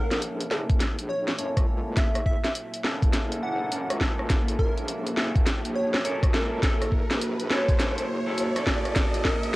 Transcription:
Already playing: A#3 C#4 E4 F#4 A4 A#4 E5 A5, riser
0.11 A#1, snare, closed hi-hat
0.22 closed hi-hat
0.40 closed hi-hat
0.51 F#1 A#3 C#4 E4 A4, snare
0.70 kick, closed hi-hat
0.80 snare, closed hi-hat
0.98 A#1, closed hi-hat
1.09 C#5
1.27 C#5, snare
1.38 F#2 A#3 C#4 E4 A4 C#5, closed hi-hat
1.57 C#2, kick, cross-stick, closed hi-hat
1.67 A#3 C#4 E4 A4
1.96 F#1 A#3 C#4 E4 A4 E5, kick, snare, closed hi-hat
2.15 cross-stick, closed hi-hat
2.26 E5, kick
2.44 E5, snare, closed hi-hat
2.55 closed hi-hat
2.74 closed hi-hat
2.84 A#3 C#4 E4 A4, snare
3.02 F#1, kick, closed hi-hat
3.13 snare, closed hi-hat
3.32 closed hi-hat
3.42 F#1 A#3 C#4 E4 A4 F#5
3.60 A#3 C#4 E4 A4
3.71 F#2 A#3 C#4 E4 A4, closed hi-hat
3.90 C#2, cross-stick, closed hi-hat
4.01 A#3 C#4 E4 A4, kick, snare
4.19 cross-stick
4.30 F#1 A#3 C#4 E4 A4, kick, snare, closed hi-hat
4.48 closed hi-hat
4.59 A#4, kick
4.78 A#1, closed hi-hat
4.88 closed hi-hat
5.07 closed hi-hat
5.17 F#1 A#3 C#4 E4 A4, snare
5.36 kick, closed hi-hat
5.47 snare, closed hi-hat
5.65 A#1, closed hi-hat
5.75 C#5
5.94 C#5, snare
6.05 F#2 A#3 C#4 E4 A4 C#5, closed hi-hat
6.23 C#2, kick, cross-stick, closed hi-hat
6.33 A#3 C#4 E4 A4 A#4, snare
6.63 F#1 A#3 C#4 E4 A4, kick, snare, closed hi-hat
6.82 cross-stick, closed hi-hat
6.92 kick
7.10 A#1, snare, closed hi-hat
7.21 closed hi-hat
7.40 closed hi-hat
7.50 E1 A#3 C#4 E4 A4 C#5, snare
7.69 kick, closed hi-hat
7.80 snare, closed hi-hat
7.98 closed hi-hat
8.08 F#1
8.27 A#3 C#4 E4 A4
8.38 closed hi-hat
8.55 A#3 C#4 E4 A4, cross-stick, closed hi-hat
8.67 F#1, kick, snare
8.85 cross-stick, closed hi-hat
8.96 F#1 A#3 C#4 E4 A4 F#5, kick, snare, closed hi-hat
9.14 closed hi-hat
9.25 A#4, kick, snare
9.43 A#1, closed hi-hat

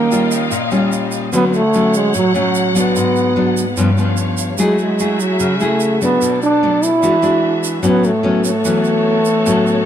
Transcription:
Already playing: D#3 A#3 C#4 D#5 F5 G5
0.12 G3 C#4 F4, shaker
0.31 shaker
0.51 A#2, shaker
0.71 G3 C#4 F4, shaker
0.92 shaker
1.12 shaker
1.33 D3 F#3 A3 B3 C#4 C#5 F#5, shaker
1.47 B3
1.54 A3, shaker
1.74 F#3 A3 C#4, shaker
1.94 G#3, shaker
2.14 A2 F#3, shaker
2.34 F#3 A3 C#4, shaker
2.55 shaker
2.75 F#3 B3 D4, shaker
2.96 G#2 B3 G#4, shaker
3.16 shaker
3.36 F#3 B3 D4
3.57 shaker
3.77 G2 F3 B3 C#4 G4 C#5 F5, shaker
3.98 F3 B3 C#4, shaker
4.17 shaker
4.37 shaker
4.58 F#3 G#3 A3 E4 F#4 G#4 E5, shaker
4.78 G#3, shaker
4.99 A3 E4 G#4, shaker
5.20 F#3, shaker
5.40 C#3, shaker
5.60 A3 E4 G#4, shaker
5.80 shaker
6.02 F#3 A3 B3 D4, shaker
6.21 B2 B3 A4 D5, shaker
6.42 D4, shaker
6.63 F#3 A3 D4
6.83 E4, shaker
7.02 E3 G#3 D4 F#4 G#4 E5, shaker
7.22 G#3 D4 F#4, shaker
7.64 shaker
7.83 A2 F#3 B3 C#4 F#4 A4 C#5, shaker
8.04 A3, shaker
8.23 F#3 B3 C#4
8.44 A3, shaker
8.65 E3 F#3 B3 C#4, shaker
8.84 shaker
9.25 shaker
9.46 A2 F#3 B3 C#4, shaker
9.66 shaker

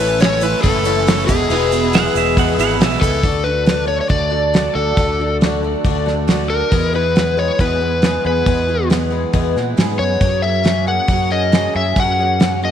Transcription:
Already playing: A1 A2 E3 B4 C#5 E5 A5 E6
0.00 A3 C#4 E4
0.19 E3 A3 C#4 E4 C#5, snare, open hi-hat, shaker
0.41 A2 E3 A3 C#4 E4 B4, open hi-hat, shaker
0.63 F#1 A2 E3 A3 C#4 E4 A4, kick, open hi-hat, shaker
0.85 A2 E3 A3 C#4 E4, open hi-hat, shaker
1.07 E3 A3 C#4 E4, snare, open hi-hat, shaker
1.27 E1 E2 B2 E3 G#3 B3 E4 G#4 B4 G#5 E6, kick, open hi-hat, shaker
1.49 E1 E2 B2 E3 G#3 B3 E4, open hi-hat, shaker
1.72 E3 G#3 B3 E4, open hi-hat, shaker
1.93 E3 G#3 B3 E4 F#5, snare, open hi-hat, shaker
2.15 E1 E2 B2 E3 G#3 B3 E4 E5, open hi-hat, shaker
2.37 E2 B2 E3 G#3 B3 E4 F#5, kick, open hi-hat, shaker
2.58 G#1 E2 B2 E3 G#3 B3 E4 F#5, open hi-hat, shaker
2.70 shaker
2.79 B1 E3 G#3 B3 E4 E5, snare, open hi-hat, shaker
3.01 C#2 E3 G#3 B3 E4 A4, kick, open hi-hat, shaker
3.14 shaker
3.23 D2 D3 A3 D4 F#4, kick, open hi-hat
3.44 D3 A3 D4 F#4 B4
3.65 D3 A3 D4 F#4, snare, open hi-hat
3.87 A3 D4 F#4 C#5
4.01 C#5
4.08 D2 D3 A3 D4 F#4 D5, kick, open hi-hat
4.30 A3 D4 F#4
4.53 D3 A3 D4 F#4, snare, open hi-hat
4.75 D2 A3 D4 F#4 A4
4.97 D2 D3 A3 D4 F#4, kick, open hi-hat
5.20 D3 A3 D4 F#4
5.41 D3 A3 D4 F#4, snare, open hi-hat
5.63 A3 D4 F#4
5.84 D2 D3 A3 D4 F#4, kick, open hi-hat
6.06 A3 D4 F#4, snare
6.27 D3 A3 D4 F#4, snare, open hi-hat
6.49 A3 D4 F#4 A#4
6.71 E2 B2 E3 G#3 B3 G#4, kick, open hi-hat
6.93 E3 G#3 B3 G#4 B4
7.15 E3 G#3 B3 G#4, snare, open hi-hat
7.37 E3 G#3 B3 G#4 C#5
7.59 E2 B2 E3 G#3 B3 G#4 B4, kick, open hi-hat
7.81 E3 G#3 B3 G#4
8.02 E3 G#3 B3 G#4, snare, open hi-hat
8.24 E2 E3 G#3 B3 G#4 B4
8.46 E2 B2 E3 G#3 B3 G#4, kick, open hi-hat
8.68 E3 G#3 B3 G#4
8.90 E3 G#3 B3 G#4, snare, open hi-hat
9.10 E3 G#3 B3 G#4
9.33 E2 B2 E3 G#3 B3 G#4, kick, open hi-hat
9.56 A#2 E3 G#3 B3 G#4, snare
9.77 G#2 E3 G#3 B3 G#4, snare, open hi-hat
9.99 F#2 E3 G#3 B3 G#4 C#5
10.20 F#2 F#3 A#3 C#4 G#4, kick, open hi-hat
10.42 F#3 A#3 C#4 G#4 E5
10.63 F#3 A#3 C#4 G#4, snare, open hi-hat
10.87 A#3 C#4 G#4 F#5
11.08 F#2 F#3 A#3 C#4 G#4, kick, open hi-hat
11.31 A#3 C#4 G#4 D#5
11.52 F#3 A#3 C#4 G#4, snare, open hi-hat
11.74 F#2 A#3 C#4 G#4 E5
11.96 F#2 F#3 A#3 C#4 G#4 F#5, kick, open hi-hat
12.18 F#3 A#3 C#4 G#4
12.40 F#3 A#3 C#4 G#4, snare, open hi-hat
12.62 A#3 C#4 G#4 D#5

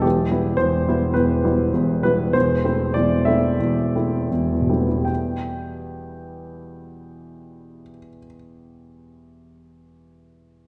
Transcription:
0.02 E1 E2 G4
0.31 G3 B3 E4
0.57 E1 E2 C5
0.87 G3 B3 E4
1.14 E1 E2 B4
1.44 G3 B3 E4
1.73 E1 E2
2.03 G3 B3 E4 B4
2.33 E1 E2 C5
2.64 A3 C4 E4
2.94 E1 E2 D5
3.25 A3 C4 E4 E5
3.59 E1 E2
3.95 A3 C4 E4
4.31 E1 E2
4.52 E2
4.61 B2
4.69 G3 A3 C4 E4
4.79 B3
4.89 E4
4.97 G4
5.05 G5

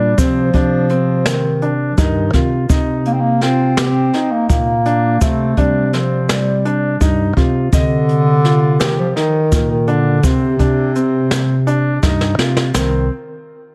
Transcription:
Already playing: A#2 G3 D4
0.18 C3 F3 C4, kick, closed hi-hat, shaker
0.54 C3 D4, kick, closed hi-hat
0.89 C4, closed hi-hat
1.26 D#3, snare, closed hi-hat, shaker
1.62 D4, closed hi-hat
1.91 F3
1.98 G2 D#3 D#4, kick, snare, closed hi-hat, shaker
2.33 C3 F4, kick, snare, closed hi-hat, shaker
2.69 C3 D#4, kick, closed hi-hat, shaker
3.05 A#3, closed hi-hat
3.13 C4
3.20 A#3
3.41 C4 F4, snare, closed hi-hat
3.77 C4 G4, snare, closed hi-hat, shaker
4.13 D#4, snare, closed hi-hat
4.31 A#3
4.49 A#2 A#3, kick, closed hi-hat, shaker
4.86 D4, closed hi-hat
5.21 C3 A3 C4, kick, closed hi-hat, shaker
5.57 C3 G3 D4, kick, closed hi-hat
5.93 F3 C4, snare, closed hi-hat
6.29 G3, snare, closed hi-hat, shaker
6.65 D4, closed hi-hat
7.01 G2 D#4, kick, closed hi-hat, shaker
7.37 C3 F4, kick, closed hi-hat
7.72 C3 D3 D#5, kick, closed hi-hat, shaker
8.09 closed hi-hat
8.45 F4, snare, closed hi-hat
8.80 D#3 G4, snare, closed hi-hat, shaker
8.99 F3
9.09 F3
9.16 D#3 D#4, snare, closed hi-hat
9.52 A#2, kick, snare, closed hi-hat, shaker
9.71 D#3
9.87 D3 D4, closed hi-hat
10.23 C3 C4, kick, closed hi-hat, shaker
10.59 C3 D4, kick, closed hi-hat, shaker
10.95 C4, closed hi-hat, shaker
11.31 snare, closed hi-hat, shaker
11.67 D4, closed hi-hat, shaker
12.03 G2 D#4, kick, snare, shaker
12.21 snare
12.38 C3 F4, snare
12.57 snare
12.74 C2 D#3 C4, snare, splash, shaker

